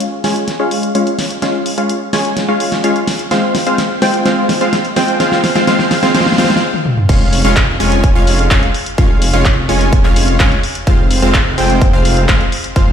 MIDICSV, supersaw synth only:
0, 0, Header, 1, 2, 480
1, 0, Start_track
1, 0, Tempo, 472441
1, 1445, Time_signature, 4, 2, 24, 8
1, 13133, End_track
2, 0, Start_track
2, 0, Title_t, "Supersaw synth"
2, 0, Program_c, 0, 81
2, 244, Note_on_c, 0, 56, 92
2, 244, Note_on_c, 0, 61, 86
2, 245, Note_on_c, 0, 65, 82
2, 245, Note_on_c, 0, 73, 86
2, 245, Note_on_c, 0, 80, 101
2, 576, Note_off_c, 0, 56, 0
2, 576, Note_off_c, 0, 61, 0
2, 576, Note_off_c, 0, 65, 0
2, 576, Note_off_c, 0, 73, 0
2, 576, Note_off_c, 0, 80, 0
2, 605, Note_on_c, 0, 56, 96
2, 605, Note_on_c, 0, 61, 92
2, 605, Note_on_c, 0, 65, 91
2, 605, Note_on_c, 0, 73, 90
2, 605, Note_on_c, 0, 77, 110
2, 936, Note_off_c, 0, 56, 0
2, 936, Note_off_c, 0, 61, 0
2, 936, Note_off_c, 0, 65, 0
2, 936, Note_off_c, 0, 73, 0
2, 936, Note_off_c, 0, 77, 0
2, 964, Note_on_c, 0, 61, 82
2, 964, Note_on_c, 0, 73, 83
2, 965, Note_on_c, 0, 56, 93
2, 965, Note_on_c, 0, 65, 82
2, 965, Note_on_c, 0, 77, 101
2, 1125, Note_off_c, 0, 56, 0
2, 1125, Note_off_c, 0, 61, 0
2, 1125, Note_off_c, 0, 65, 0
2, 1125, Note_off_c, 0, 73, 0
2, 1125, Note_off_c, 0, 77, 0
2, 1445, Note_on_c, 0, 56, 85
2, 1445, Note_on_c, 0, 61, 78
2, 1445, Note_on_c, 0, 65, 77
2, 1445, Note_on_c, 0, 73, 76
2, 1445, Note_on_c, 0, 77, 91
2, 1776, Note_off_c, 0, 56, 0
2, 1776, Note_off_c, 0, 61, 0
2, 1776, Note_off_c, 0, 65, 0
2, 1776, Note_off_c, 0, 73, 0
2, 1776, Note_off_c, 0, 77, 0
2, 1806, Note_on_c, 0, 56, 81
2, 1806, Note_on_c, 0, 61, 74
2, 1806, Note_on_c, 0, 65, 75
2, 1806, Note_on_c, 0, 73, 76
2, 1806, Note_on_c, 0, 77, 87
2, 1966, Note_off_c, 0, 56, 0
2, 1966, Note_off_c, 0, 61, 0
2, 1966, Note_off_c, 0, 65, 0
2, 1966, Note_off_c, 0, 73, 0
2, 1966, Note_off_c, 0, 77, 0
2, 2165, Note_on_c, 0, 80, 103
2, 2166, Note_on_c, 0, 56, 89
2, 2166, Note_on_c, 0, 61, 82
2, 2166, Note_on_c, 0, 65, 83
2, 2166, Note_on_c, 0, 73, 85
2, 2496, Note_off_c, 0, 56, 0
2, 2496, Note_off_c, 0, 61, 0
2, 2496, Note_off_c, 0, 65, 0
2, 2496, Note_off_c, 0, 73, 0
2, 2496, Note_off_c, 0, 80, 0
2, 2525, Note_on_c, 0, 56, 96
2, 2525, Note_on_c, 0, 61, 93
2, 2525, Note_on_c, 0, 65, 91
2, 2525, Note_on_c, 0, 73, 88
2, 2526, Note_on_c, 0, 77, 104
2, 2856, Note_off_c, 0, 56, 0
2, 2856, Note_off_c, 0, 61, 0
2, 2856, Note_off_c, 0, 65, 0
2, 2856, Note_off_c, 0, 73, 0
2, 2856, Note_off_c, 0, 77, 0
2, 2884, Note_on_c, 0, 56, 89
2, 2884, Note_on_c, 0, 61, 84
2, 2884, Note_on_c, 0, 65, 86
2, 2884, Note_on_c, 0, 73, 84
2, 2884, Note_on_c, 0, 77, 99
2, 3045, Note_off_c, 0, 56, 0
2, 3045, Note_off_c, 0, 61, 0
2, 3045, Note_off_c, 0, 65, 0
2, 3045, Note_off_c, 0, 73, 0
2, 3045, Note_off_c, 0, 77, 0
2, 3364, Note_on_c, 0, 56, 77
2, 3364, Note_on_c, 0, 60, 72
2, 3364, Note_on_c, 0, 65, 70
2, 3364, Note_on_c, 0, 72, 70
2, 3364, Note_on_c, 0, 77, 87
2, 3695, Note_off_c, 0, 56, 0
2, 3695, Note_off_c, 0, 60, 0
2, 3695, Note_off_c, 0, 65, 0
2, 3695, Note_off_c, 0, 72, 0
2, 3696, Note_off_c, 0, 77, 0
2, 3724, Note_on_c, 0, 56, 79
2, 3724, Note_on_c, 0, 60, 66
2, 3725, Note_on_c, 0, 65, 69
2, 3725, Note_on_c, 0, 72, 68
2, 3725, Note_on_c, 0, 77, 81
2, 3885, Note_off_c, 0, 56, 0
2, 3885, Note_off_c, 0, 60, 0
2, 3885, Note_off_c, 0, 65, 0
2, 3885, Note_off_c, 0, 72, 0
2, 3885, Note_off_c, 0, 77, 0
2, 4084, Note_on_c, 0, 72, 80
2, 4085, Note_on_c, 0, 56, 86
2, 4085, Note_on_c, 0, 60, 79
2, 4085, Note_on_c, 0, 65, 81
2, 4085, Note_on_c, 0, 79, 97
2, 4305, Note_off_c, 0, 56, 0
2, 4305, Note_off_c, 0, 60, 0
2, 4305, Note_off_c, 0, 65, 0
2, 4305, Note_off_c, 0, 72, 0
2, 4305, Note_off_c, 0, 79, 0
2, 4324, Note_on_c, 0, 56, 77
2, 4324, Note_on_c, 0, 60, 75
2, 4324, Note_on_c, 0, 65, 73
2, 4324, Note_on_c, 0, 72, 73
2, 4324, Note_on_c, 0, 77, 85
2, 4655, Note_off_c, 0, 65, 0
2, 4655, Note_off_c, 0, 72, 0
2, 4656, Note_off_c, 0, 56, 0
2, 4656, Note_off_c, 0, 60, 0
2, 4656, Note_off_c, 0, 77, 0
2, 4684, Note_on_c, 0, 56, 84
2, 4684, Note_on_c, 0, 60, 75
2, 4684, Note_on_c, 0, 65, 72
2, 4684, Note_on_c, 0, 72, 75
2, 4685, Note_on_c, 0, 77, 90
2, 4845, Note_off_c, 0, 56, 0
2, 4845, Note_off_c, 0, 60, 0
2, 4845, Note_off_c, 0, 65, 0
2, 4845, Note_off_c, 0, 72, 0
2, 4845, Note_off_c, 0, 77, 0
2, 5044, Note_on_c, 0, 56, 93
2, 5044, Note_on_c, 0, 60, 86
2, 5044, Note_on_c, 0, 65, 87
2, 5044, Note_on_c, 0, 72, 84
2, 5044, Note_on_c, 0, 79, 103
2, 5265, Note_off_c, 0, 56, 0
2, 5265, Note_off_c, 0, 60, 0
2, 5265, Note_off_c, 0, 65, 0
2, 5265, Note_off_c, 0, 72, 0
2, 5265, Note_off_c, 0, 79, 0
2, 5284, Note_on_c, 0, 56, 84
2, 5284, Note_on_c, 0, 60, 78
2, 5284, Note_on_c, 0, 65, 78
2, 5284, Note_on_c, 0, 72, 78
2, 5284, Note_on_c, 0, 77, 94
2, 5615, Note_off_c, 0, 56, 0
2, 5615, Note_off_c, 0, 60, 0
2, 5615, Note_off_c, 0, 65, 0
2, 5615, Note_off_c, 0, 72, 0
2, 5616, Note_off_c, 0, 77, 0
2, 5644, Note_on_c, 0, 56, 77
2, 5644, Note_on_c, 0, 60, 77
2, 5644, Note_on_c, 0, 65, 77
2, 5644, Note_on_c, 0, 72, 73
2, 5644, Note_on_c, 0, 77, 87
2, 5745, Note_off_c, 0, 56, 0
2, 5745, Note_off_c, 0, 60, 0
2, 5745, Note_off_c, 0, 65, 0
2, 5745, Note_off_c, 0, 72, 0
2, 5745, Note_off_c, 0, 77, 0
2, 5764, Note_on_c, 0, 77, 93
2, 5765, Note_on_c, 0, 56, 82
2, 5765, Note_on_c, 0, 60, 75
2, 5765, Note_on_c, 0, 65, 78
2, 5765, Note_on_c, 0, 72, 74
2, 6095, Note_off_c, 0, 77, 0
2, 6096, Note_off_c, 0, 56, 0
2, 6096, Note_off_c, 0, 60, 0
2, 6096, Note_off_c, 0, 65, 0
2, 6096, Note_off_c, 0, 72, 0
2, 6124, Note_on_c, 0, 56, 83
2, 6124, Note_on_c, 0, 60, 79
2, 6124, Note_on_c, 0, 65, 74
2, 6124, Note_on_c, 0, 72, 80
2, 6124, Note_on_c, 0, 77, 89
2, 6225, Note_off_c, 0, 56, 0
2, 6225, Note_off_c, 0, 60, 0
2, 6225, Note_off_c, 0, 65, 0
2, 6225, Note_off_c, 0, 72, 0
2, 6225, Note_off_c, 0, 77, 0
2, 6244, Note_on_c, 0, 56, 85
2, 6244, Note_on_c, 0, 60, 77
2, 6244, Note_on_c, 0, 65, 75
2, 6244, Note_on_c, 0, 72, 79
2, 6244, Note_on_c, 0, 77, 93
2, 6465, Note_off_c, 0, 56, 0
2, 6465, Note_off_c, 0, 60, 0
2, 6465, Note_off_c, 0, 65, 0
2, 6465, Note_off_c, 0, 72, 0
2, 6465, Note_off_c, 0, 77, 0
2, 6484, Note_on_c, 0, 56, 85
2, 6484, Note_on_c, 0, 60, 80
2, 6484, Note_on_c, 0, 65, 76
2, 6484, Note_on_c, 0, 72, 78
2, 6485, Note_on_c, 0, 77, 98
2, 6705, Note_off_c, 0, 56, 0
2, 6705, Note_off_c, 0, 60, 0
2, 6705, Note_off_c, 0, 65, 0
2, 6705, Note_off_c, 0, 72, 0
2, 6705, Note_off_c, 0, 77, 0
2, 7205, Note_on_c, 0, 56, 84
2, 7205, Note_on_c, 0, 65, 79
2, 7205, Note_on_c, 0, 73, 79
2, 7205, Note_on_c, 0, 77, 94
2, 7206, Note_on_c, 0, 61, 80
2, 7536, Note_off_c, 0, 56, 0
2, 7536, Note_off_c, 0, 61, 0
2, 7536, Note_off_c, 0, 65, 0
2, 7536, Note_off_c, 0, 73, 0
2, 7536, Note_off_c, 0, 77, 0
2, 7564, Note_on_c, 0, 61, 74
2, 7564, Note_on_c, 0, 65, 76
2, 7564, Note_on_c, 0, 73, 76
2, 7564, Note_on_c, 0, 77, 89
2, 7565, Note_on_c, 0, 56, 82
2, 7725, Note_off_c, 0, 56, 0
2, 7725, Note_off_c, 0, 61, 0
2, 7725, Note_off_c, 0, 65, 0
2, 7725, Note_off_c, 0, 73, 0
2, 7725, Note_off_c, 0, 77, 0
2, 7925, Note_on_c, 0, 56, 95
2, 7925, Note_on_c, 0, 61, 87
2, 7925, Note_on_c, 0, 65, 91
2, 7925, Note_on_c, 0, 73, 86
2, 7925, Note_on_c, 0, 80, 101
2, 8256, Note_off_c, 0, 56, 0
2, 8256, Note_off_c, 0, 61, 0
2, 8256, Note_off_c, 0, 65, 0
2, 8256, Note_off_c, 0, 73, 0
2, 8256, Note_off_c, 0, 80, 0
2, 8285, Note_on_c, 0, 56, 101
2, 8285, Note_on_c, 0, 61, 92
2, 8285, Note_on_c, 0, 65, 91
2, 8285, Note_on_c, 0, 73, 91
2, 8285, Note_on_c, 0, 77, 113
2, 8616, Note_off_c, 0, 56, 0
2, 8616, Note_off_c, 0, 61, 0
2, 8616, Note_off_c, 0, 65, 0
2, 8616, Note_off_c, 0, 73, 0
2, 8616, Note_off_c, 0, 77, 0
2, 8645, Note_on_c, 0, 56, 92
2, 8645, Note_on_c, 0, 61, 85
2, 8645, Note_on_c, 0, 65, 83
2, 8645, Note_on_c, 0, 73, 86
2, 8645, Note_on_c, 0, 77, 105
2, 8805, Note_off_c, 0, 56, 0
2, 8805, Note_off_c, 0, 61, 0
2, 8805, Note_off_c, 0, 65, 0
2, 8805, Note_off_c, 0, 73, 0
2, 8805, Note_off_c, 0, 77, 0
2, 9125, Note_on_c, 0, 56, 86
2, 9125, Note_on_c, 0, 61, 78
2, 9125, Note_on_c, 0, 65, 80
2, 9125, Note_on_c, 0, 73, 79
2, 9125, Note_on_c, 0, 77, 99
2, 9456, Note_off_c, 0, 56, 0
2, 9456, Note_off_c, 0, 61, 0
2, 9456, Note_off_c, 0, 65, 0
2, 9456, Note_off_c, 0, 73, 0
2, 9456, Note_off_c, 0, 77, 0
2, 9485, Note_on_c, 0, 56, 79
2, 9485, Note_on_c, 0, 61, 76
2, 9485, Note_on_c, 0, 65, 77
2, 9485, Note_on_c, 0, 73, 74
2, 9485, Note_on_c, 0, 77, 87
2, 9645, Note_off_c, 0, 56, 0
2, 9645, Note_off_c, 0, 61, 0
2, 9645, Note_off_c, 0, 65, 0
2, 9645, Note_off_c, 0, 73, 0
2, 9645, Note_off_c, 0, 77, 0
2, 9844, Note_on_c, 0, 56, 100
2, 9844, Note_on_c, 0, 73, 83
2, 9844, Note_on_c, 0, 80, 104
2, 9845, Note_on_c, 0, 61, 91
2, 9845, Note_on_c, 0, 65, 85
2, 10176, Note_off_c, 0, 56, 0
2, 10176, Note_off_c, 0, 61, 0
2, 10176, Note_off_c, 0, 65, 0
2, 10176, Note_off_c, 0, 73, 0
2, 10176, Note_off_c, 0, 80, 0
2, 10204, Note_on_c, 0, 56, 101
2, 10204, Note_on_c, 0, 61, 93
2, 10204, Note_on_c, 0, 65, 92
2, 10204, Note_on_c, 0, 73, 91
2, 10204, Note_on_c, 0, 77, 112
2, 10535, Note_off_c, 0, 65, 0
2, 10535, Note_off_c, 0, 73, 0
2, 10536, Note_off_c, 0, 56, 0
2, 10536, Note_off_c, 0, 61, 0
2, 10536, Note_off_c, 0, 77, 0
2, 10565, Note_on_c, 0, 56, 91
2, 10565, Note_on_c, 0, 61, 88
2, 10565, Note_on_c, 0, 65, 82
2, 10565, Note_on_c, 0, 73, 85
2, 10565, Note_on_c, 0, 77, 102
2, 10725, Note_off_c, 0, 56, 0
2, 10725, Note_off_c, 0, 61, 0
2, 10725, Note_off_c, 0, 65, 0
2, 10725, Note_off_c, 0, 77, 0
2, 10726, Note_off_c, 0, 73, 0
2, 11044, Note_on_c, 0, 56, 84
2, 11044, Note_on_c, 0, 65, 77
2, 11044, Note_on_c, 0, 72, 79
2, 11044, Note_on_c, 0, 77, 95
2, 11045, Note_on_c, 0, 60, 76
2, 11375, Note_off_c, 0, 56, 0
2, 11376, Note_off_c, 0, 60, 0
2, 11376, Note_off_c, 0, 65, 0
2, 11376, Note_off_c, 0, 72, 0
2, 11376, Note_off_c, 0, 77, 0
2, 11404, Note_on_c, 0, 56, 82
2, 11404, Note_on_c, 0, 60, 77
2, 11404, Note_on_c, 0, 65, 74
2, 11404, Note_on_c, 0, 72, 77
2, 11404, Note_on_c, 0, 77, 93
2, 11565, Note_off_c, 0, 56, 0
2, 11565, Note_off_c, 0, 60, 0
2, 11565, Note_off_c, 0, 65, 0
2, 11565, Note_off_c, 0, 72, 0
2, 11565, Note_off_c, 0, 77, 0
2, 11764, Note_on_c, 0, 56, 96
2, 11764, Note_on_c, 0, 60, 87
2, 11764, Note_on_c, 0, 65, 87
2, 11764, Note_on_c, 0, 72, 83
2, 11764, Note_on_c, 0, 79, 108
2, 12095, Note_off_c, 0, 56, 0
2, 12095, Note_off_c, 0, 60, 0
2, 12095, Note_off_c, 0, 65, 0
2, 12095, Note_off_c, 0, 72, 0
2, 12095, Note_off_c, 0, 79, 0
2, 12124, Note_on_c, 0, 56, 97
2, 12124, Note_on_c, 0, 60, 91
2, 12124, Note_on_c, 0, 65, 93
2, 12125, Note_on_c, 0, 72, 91
2, 12125, Note_on_c, 0, 77, 109
2, 12456, Note_off_c, 0, 56, 0
2, 12456, Note_off_c, 0, 60, 0
2, 12456, Note_off_c, 0, 65, 0
2, 12456, Note_off_c, 0, 72, 0
2, 12456, Note_off_c, 0, 77, 0
2, 12484, Note_on_c, 0, 56, 93
2, 12485, Note_on_c, 0, 60, 82
2, 12485, Note_on_c, 0, 65, 83
2, 12485, Note_on_c, 0, 72, 84
2, 12485, Note_on_c, 0, 77, 106
2, 12645, Note_off_c, 0, 56, 0
2, 12645, Note_off_c, 0, 60, 0
2, 12645, Note_off_c, 0, 65, 0
2, 12645, Note_off_c, 0, 72, 0
2, 12645, Note_off_c, 0, 77, 0
2, 12965, Note_on_c, 0, 56, 88
2, 12965, Note_on_c, 0, 60, 81
2, 12965, Note_on_c, 0, 65, 79
2, 12965, Note_on_c, 0, 72, 78
2, 12965, Note_on_c, 0, 77, 95
2, 13133, Note_off_c, 0, 56, 0
2, 13133, Note_off_c, 0, 60, 0
2, 13133, Note_off_c, 0, 65, 0
2, 13133, Note_off_c, 0, 72, 0
2, 13133, Note_off_c, 0, 77, 0
2, 13133, End_track
0, 0, End_of_file